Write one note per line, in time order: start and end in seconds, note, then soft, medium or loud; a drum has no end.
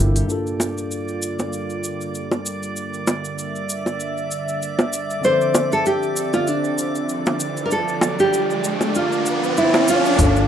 0.00 0.20 G1 medium
0.00 0.25 C3 medium
0.00 0.25 G3 medium
0.00 0.25 A#3 medium
0.00 0.28 A#3 medium
0.00 0.29 D4 medium
0.00 0.25 E4 medium
0.00 0.31 E4 medium
0.00 0.27 G4 medium
0.00 0.31 A4 medium
0.16 open hi-hat soft
0.16 cabasa soft
0.26 5.19 G2 medium
0.26 10.15 D3 medium
0.26 5.19 G3 medium
0.26 5.20 A#3 medium
0.26 5.20 D4 medium
0.26 2.74 F4 medium
0.26 10.20 D5 medium
0.26 10.21 D6 medium
0.26 cabasa soft
0.30 5.21 F4 medium
0.30 5.22 A4 medium
0.47 cabasa soft
0.60 high bongo medium
0.60 cabasa medium
0.78 cabasa soft
0.91 cabasa soft
1.08 cabasa soft
1.22 cabasa medium
1.39 high bongo medium
1.39 cabasa soft
1.53 cabasa soft
1.70 cabasa soft
1.84 cabasa medium
2.01 cabasa soft
2.15 cabasa soft
2.31 high bongo medium
2.31 cabasa soft
2.46 cabasa medium
2.63 cabasa soft
2.76 10.15 E5 medium
2.76 cabasa soft
2.94 cabasa soft
3.07 high bongo medium
3.07 cabasa medium
3.25 cabasa soft
3.39 cabasa soft
3.56 cabasa soft
3.69 cabasa medium
3.86 high bongo medium
3.86 cabasa soft
4.00 cabasa soft
4.18 cabasa soft
4.31 cabasa medium
4.48 cabasa soft
4.62 cabasa soft
4.79 high bongo medium
4.79 cabasa soft
4.93 cabasa medium
5.10 cabasa soft
5.21 10.14 D3 medium
5.21 10.15 F3 medium
5.21 10.16 F3 medium
5.21 10.15 C4 medium
5.21 7.69 C4 medium
5.21 5.73 C5 medium
5.21 10.15 E5 medium
5.21 riser medium
5.21 cabasa soft
5.26 10.17 A4 medium
5.41 cabasa soft
5.54 high bongo medium
5.54 cabasa medium
5.72 5.86 A4 medium
5.72 cabasa soft
5.86 6.31 G4 medium
5.86 cabasa soft
6.03 cabasa soft
6.16 cabasa medium
6.33 6.48 F4 medium
6.33 high bongo medium
6.33 cabasa soft
6.47 7.41 D4 medium
6.47 cabasa soft
6.64 cabasa soft
6.78 cabasa medium
6.95 cabasa soft
7.09 cabasa soft
7.26 high bongo medium
7.26 cabasa soft
7.40 cabasa medium
7.57 cabasa soft
7.66 7.72 A#4 medium
7.71 10.16 D4 medium
7.71 8.20 A4 medium
7.71 cabasa soft
7.88 cabasa soft
8.01 high bongo medium
8.01 cabasa medium
8.19 8.98 G4 medium
8.19 cabasa soft
8.33 cabasa soft
8.50 cabasa soft
8.64 cabasa medium
8.81 high bongo medium
8.81 cabasa soft
8.95 9.84 F4 medium
8.95 cabasa soft
9.12 cabasa soft
9.26 cabasa medium
9.44 cabasa soft
9.57 9.89 E4 medium
9.57 cabasa soft
9.74 high bongo medium
9.74 cabasa soft
9.88 10.48 F4 medium
9.88 cabasa medium
10.05 cabasa soft
10.16 10.48 G1 medium
10.16 10.48 D3 medium
10.16 10.48 F3 medium
10.16 10.48 G3 medium
10.16 10.48 A#3 medium
10.16 10.48 D4 medium
10.16 10.48 F4 medium
10.16 10.48 G5 medium
10.16 10.48 G6 medium
10.16 kick loud
10.16 open hi-hat medium
10.16 cabasa soft
10.22 10.48 A4 medium
10.36 cabasa soft